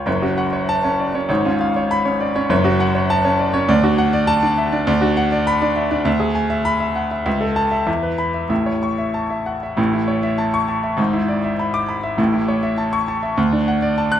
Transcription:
0.06 F#1 F#2 C#5
0.22 C#4 F#4
0.38 F#5
0.53 C#5
0.69 A5
0.84 C#4 C#5
1.00 D5
1.15 C#4 C#5
1.29 G#1 G#2 C#5
1.45 C#4 F4
1.61 F5
1.76 C#5
1.91 B5
2.05 C#4 C#5
2.20 D5
2.35 C#4 C#5
2.49 F#1 F#2 C#5
2.64 C#4 F#4
2.80 F#5
2.95 C#5
3.10 A5
3.25 C#4 C#5
3.39 D5
3.54 C#4 C#5
3.69 D2 D5
3.83 D4 F#4
3.98 F#5
4.13 D5
4.27 A5
4.42 D4 D5
4.58 E5
4.72 D4 D5
4.87 D2 D5
5.01 D4 F#4
5.17 F#5
5.32 D5
5.47 B5
5.62 D4 D5
5.76 E5
5.91 D4 D5
6.05 D2 E5
6.20 G#4
6.35 G#5
6.50 E5
6.65 B5
6.80 E5
6.96 F#5
7.11 E5
7.26 C#2 E5
7.41 A4
7.56 A5
7.71 E5
7.87 E2 E5
8.03 B4
8.18 B5
8.34 E5
8.49 A1 A2 E5
8.66 C#5
8.83 C#6
8.98 E5
9.14 A5
9.30 E5
9.46 F#5
9.63 E5
9.77 A1 A2
9.93 E4
10.08 C#5
10.23 E5
10.38 A5
10.54 C#6
10.68 A5
10.83 E5
10.97 G#1 G#2
11.13 E4
11.28 D5
11.44 E5
11.59 B5
11.74 D6
11.89 B5
12.03 E5
12.17 A1 A2
12.33 E4
12.48 C#5
12.63 E5
12.78 A5
12.93 C#6
13.08 A5
13.23 E5
13.37 D2
13.52 D4
13.68 F#5
13.82 D5
13.98 A5
14.12 F#6

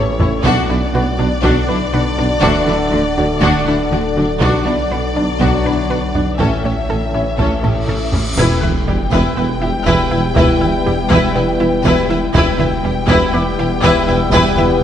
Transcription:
Already playing: A1 E3 A3 C#4 E4 G4 A4 C#5 A5
0.19 A1 A2 C#4 E4, taiko low
0.43 B1 B2 D3 B3 D4 F#4 B4 D5 F#5, taiko
0.68 B1 B2 D4 E4
0.93 B1 B2 D4 F#4 B4 F#5
1.18 B1 B2 D4
1.42 B1 B2 B3 D4 F#4, taiko
1.68 B1 B2 D4 E4 B4
1.92 B1 B2 D4 F#4 B4
2.17 B1 B2 D4, taiko low
2.40 D1 D2 D3 D4 F#4 A4 E5, taiko
2.66 D2 D3 F#3 D4 E4
2.91 D2 D3 D4 F#4
3.17 D2 D3 F#3 D4
3.41 D2 D3 D4 F#4, taiko
3.66 D2 D3 D4 E4
3.91 D2 D3 D4 F#4
4.16 D2 D3 F#3 D4, taiko low
4.41 B1 B2 F#3 B3 D4 F#4 B4 D5, taiko
4.65 B1 B2 D4 E4 D5
4.90 B1 B2 D4 F#4 B4
5.15 B1 B2 D4
5.40 B1 B2 B3 D4 F#4, taiko
5.64 B1 B2 D4 E4 B4
5.89 B1 B2 D4 F#4 B4
6.14 B1 B2 D4, taiko low
6.38 A1 A2 E3 A3 C#4 E4 A4 E5 G5, taiko, cymbal swell
6.64 A1 A2 C#4 G4
6.89 A1 A2 C#4 A4
7.13 A1 A2 C#4 E4
7.38 A1 A2 A3 C#4 A4, taiko
7.62 A1 A2 C#4 G4 A4, taiko low-mid
7.87 A1 A2 C#4 A4, taiko low-mid
8.12 A1 A2 C#4 E4, taiko low
8.37 E1 E2 E3 G3 B3 E4 B4 G5, taiko, sub drop
8.60 E1 E2 E4 B4 F#6, taiko mid
8.86 E1 E2 G3 E4 G4
9.11 E1 E2 E3 E4 B4, taiko
9.37 E1 E2 B3 E4 B4
9.62 E1 E2 E4 G4
9.86 E1 E2 E3 E4 B4, taiko
10.11 E1 E2 E4 B4
10.36 E1 E2 E3 E4 B4, taiko
10.60 E1 E2 E4 B4, taiko mid
10.86 E1 E2 G3 E4 G4
11.10 E1 E2 E3 E4 B4, taiko
11.35 E1 E2 B3 E4 B4
11.60 E1 E2 E4 G4
11.84 E1 E2 E3 E4 B4, taiko
12.09 E1 E2 E4 B4
12.34 E1 E2 E3 G3 B3 E4 B4 G5, taiko
12.59 E1 E2 E4 B4, taiko mid
12.83 E1 E2 G3 E4 G4
13.08 E1 E2 E3 E4 B4 B5, taiko
13.33 E1 E2 B3 E4 B4 D6
13.58 E1 E2 E4 G4
13.82 E1 E2 E3 E4 B4 E5 E6, taiko
14.08 E1 E2 E4 B4
14.32 E1 E2 E3 E4 B4, taiko
14.57 E1 E2 E4 B4, taiko mid

